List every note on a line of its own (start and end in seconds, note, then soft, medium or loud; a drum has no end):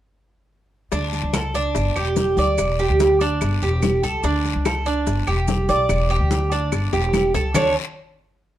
0.92 1.22 D2 loud
0.92 1.32 D4 medium
0.92 high bongo medium
0.92 high conga soft
0.92 long guiro medium
0.92 maracas medium
1.12 high bongo soft
1.12 high conga soft
1.12 maracas soft
1.23 1.73 C#2 medium
1.33 1.54 A4 medium
1.33 high bongo medium
1.33 high conga medium
1.33 short guiro medium
1.33 claves medium
1.33 maracas medium
1.54 1.95 D4 medium
1.54 high bongo soft
1.54 high conga soft
1.54 short guiro medium
1.54 maracas soft
1.75 1.95 G1 medium
1.75 high bongo medium
1.75 high conga soft
1.75 long guiro medium
1.75 maracas medium
1.96 2.36 E1 medium
1.96 2.36 G4 medium
1.96 high conga soft
1.96 claves medium
1.96 maracas soft
2.16 high bongo soft
2.16 low bongo medium
2.16 high conga medium
2.16 short guiro medium
2.16 maracas medium
2.37 2.57 D2 medium
2.37 2.78 D5 medium
2.37 high bongo soft
2.37 high conga medium
2.37 short guiro medium
2.37 maracas soft
2.58 2.88 E1 medium
2.58 high bongo medium
2.58 high conga soft
2.58 long guiro medium
2.58 claves medium
2.58 maracas medium
2.79 3.19 G4 medium
2.79 high bongo soft
2.79 high conga soft
2.79 maracas soft
2.90 3.39 D2 medium
3.00 high bongo medium
3.00 high conga medium
3.00 short guiro medium
3.00 maracas medium
3.20 3.61 D4 medium
3.20 high bongo soft
3.20 high conga soft
3.20 short guiro medium
3.20 maracas soft
3.41 3.61 G1 loud
3.41 high bongo medium
3.41 high conga soft
3.41 long guiro medium
3.41 claves medium
3.41 maracas medium
3.62 4.02 E1 medium
3.62 4.03 G4 medium
3.62 high conga soft
3.62 maracas soft
3.82 high bongo soft
3.82 low bongo medium
3.82 high conga medium
3.82 short guiro medium
3.82 claves medium
3.82 maracas medium
4.03 4.23 C#2 medium
4.03 4.24 A4 medium
4.03 high bongo soft
4.03 high conga soft
4.03 short guiro medium
4.03 maracas soft
4.23 4.53 D2 medium
4.23 4.64 D4 medium
4.23 high bongo medium
4.23 high conga soft
4.23 long guiro medium
4.23 maracas medium
4.45 high bongo soft
4.45 high conga soft
4.45 maracas soft
4.56 5.04 C#2 medium
4.65 4.86 A4 medium
4.65 high bongo medium
4.65 high conga medium
4.65 short guiro medium
4.65 claves medium
4.65 maracas medium
4.86 5.26 D4 medium
4.86 high bongo soft
4.86 high conga soft
4.86 short guiro medium
4.86 maracas soft
5.07 5.27 G1 loud
5.07 high bongo medium
5.07 high conga soft
5.07 long guiro medium
5.07 maracas medium
5.27 5.67 E1 medium
5.27 5.68 G4 medium
5.27 high conga soft
5.27 claves medium
5.27 maracas soft
5.48 high bongo soft
5.48 low bongo medium
5.48 high conga medium
5.48 short guiro medium
5.48 maracas medium
5.69 5.88 B1 medium
5.69 6.09 D5 medium
5.69 high bongo soft
5.69 high conga medium
5.69 short guiro medium
5.69 maracas soft
5.89 6.19 E1 loud
5.89 high bongo medium
5.89 high conga soft
5.89 long guiro medium
5.89 claves medium
5.89 maracas medium
6.10 6.50 G4 medium
6.10 high bongo soft
6.10 high conga soft
6.10 maracas soft
6.20 6.69 D2 medium
6.31 high bongo medium
6.31 high conga medium
6.31 short guiro medium
6.31 maracas medium
6.51 6.92 D4 medium
6.51 high bongo soft
6.51 high conga soft
6.51 short guiro medium
6.51 maracas soft
6.72 6.92 G1 loud
6.72 high bongo medium
6.72 high conga soft
6.72 long guiro medium
6.72 claves medium
6.72 maracas medium
6.92 7.32 E1 loud
6.92 7.33 G4 medium
6.92 high bongo medium
6.92 high conga soft
6.92 maracas soft
7.13 low bongo medium
7.13 high conga medium
7.13 short guiro medium
7.13 claves medium
7.13 maracas medium
7.34 7.54 C#2 medium
7.34 7.54 A4 medium
7.34 low bongo medium
7.34 high conga soft
7.34 short guiro medium
7.34 maracas soft
7.54 7.74 D2 medium
7.54 7.74 D4 medium
7.54 7.74 A4 medium
7.54 7.75 C#5 loud
7.54 low bongo medium
7.54 low conga medium
7.54 long guiro loud
7.54 claves loud
7.54 maracas medium